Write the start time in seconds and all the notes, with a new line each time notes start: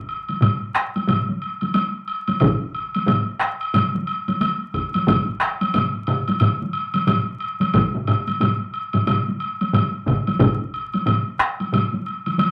0.09 high woodblock
0.29 taiko high, high woodblock
0.41 taiko low-mid, taiko mid, taiko high, high woodblock
0.74 taiko rim, high woodblock
0.96 taiko high, high woodblock
1.07 taiko low-mid, taiko mid, taiko high, high woodblock
1.29 taiko high
1.42 high woodblock
1.61 taiko high, high woodblock
1.74 taiko high, high woodblock
2.08 high woodblock
2.28 taiko high, high woodblock
2.40 taiko, taiko low-mid, taiko mid, taiko high, high woodblock
2.74 high woodblock
2.94 taiko high, high woodblock
3.07 taiko low-mid, taiko mid, taiko high, high woodblock
3.40 taiko rim, high woodblock
3.61 high woodblock
3.74 taiko low-mid, taiko mid, taiko high, high woodblock
3.95 taiko high
4.07 high woodblock
4.28 taiko high, high woodblock
4.41 taiko high, high woodblock
4.74 taiko, high woodblock
4.94 taiko high, high woodblock
5.07 taiko, taiko low-mid, taiko mid, taiko high, high woodblock
5.40 taiko rim, high woodblock
5.61 taiko high, high woodblock
5.74 taiko low-mid, taiko mid, taiko high, high woodblock
6.07 taiko low-mid, taiko mid, high woodblock
6.28 taiko high, high woodblock
6.40 taiko low-mid, taiko mid, taiko high, high woodblock
6.62 taiko high
6.73 high woodblock
6.94 taiko high, high woodblock
7.07 taiko low-mid, taiko mid, taiko high, high woodblock
7.40 high woodblock
7.60 taiko high, high woodblock
7.74 taiko, taiko low-mid, taiko mid, taiko high, high woodblock
7.94 taiko low-mid, taiko mid
8.07 taiko low-mid, taiko mid, high woodblock
8.27 taiko high, high woodblock
8.41 taiko low-mid, taiko mid, taiko high, high woodblock
8.74 high woodblock
8.93 taiko low-mid, taiko mid, taiko high, high woodblock
9.07 taiko low-mid, taiko mid, taiko high, high woodblock
9.28 taiko high
9.40 high woodblock
9.61 taiko high, high woodblock
9.73 taiko low-mid, taiko mid, taiko high, high woodblock
10.06 taiko, taiko low-mid, taiko mid, high woodblock
10.27 taiko high, high woodblock
10.40 taiko, taiko low-mid, taiko mid, taiko high, high woodblock
10.74 high woodblock
10.94 taiko high, high woodblock
11.06 taiko low-mid, taiko mid, taiko high, high woodblock
11.40 taiko rim, high woodblock
11.60 taiko high, high woodblock
11.72 taiko low-mid, taiko mid, taiko high, high woodblock
11.93 taiko high
12.06 high woodblock
12.26 taiko high, high woodblock
12.39 taiko high, high woodblock